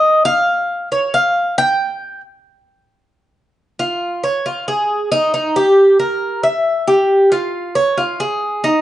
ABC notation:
X:1
M:4/4
L:1/8
Q:1/4=136
K:Ebmix
V:1 name="Cuban tres"
e f3 d f2 g- | g2 z6 | z F2 d F A2 E | E G2 B2 =e2 G- |
G F2 d F A2 E |]